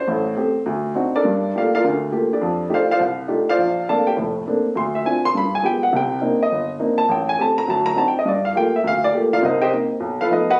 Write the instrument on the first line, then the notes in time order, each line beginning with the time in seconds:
upright piano
0.00 C5
0.08 A1 A2
0.37 A3 C4 G4
0.66 D2
0.95 C4 D4 D#4 F#4
1.16 D4 A4 A#4 D5
1.25 G2 G3
1.55 A3 A#3 F4 G4 A#4 D5 F5
1.75 F4 A#4 D5 F5
1.84 D2 D3
2.11 A3 A#3 F4 G4
2.33 D4 G4 A4 D5
2.41 F2
2.69 A3 D4 D#4 F4 G4
2.74 F4 C5 D5 F5
2.91 F4 C5 D5 F5
2.99 C2
3.28 A3 D4 D#4 F4 G4
3.49 F4 C5 D5 F5
3.58 A#1
3.88 A3 A#3 C4 D4 A4 D5 F5 A5
4.07 G4 G5
4.17 F1 A2
4.46 A3 A#3 C4 D4
4.76 D2 C6
4.95 E5
5.05 C4 D4 F4 G#5
5.25 C6
5.35 G2 B5
5.55 G#5
5.63 G#3 B3 F4 G4 G5
5.83 F#5
5.92 C2 C3 G5
6.21 A#3 C4 D4 D#4
6.43 D#5
6.51 G1
6.79 A#3 C4 D4 D#4
6.98 A5
7.09 A1 G5
7.29 G#5
7.39 A3 C4 G4 A5
7.58 A#5
7.67 D2 F#3 A5
7.86 A#5
7.96 C4 D4 D#4 F#4 A5
8.08 G5
8.19 D#5
8.25 G2 D5
8.45 F5
8.55 A3 A#3 F4 G4 G5
8.76 E5
8.84 D2 F5
9.04 D5
9.13 A3 A#3 F4 G4
9.33 F4 A#4 D5 F5
9.43 C2 C3 D#4 A#4 C5 D#5
9.62 G4 C5 D#5 G5
9.71 A#3 C4 D#4
10.00 B1
10.21 F4 A4 B4 F5
10.30 F3 A3 B3 D#4 A4 B4 D#5
10.50 F#4 B4 D#5 F#5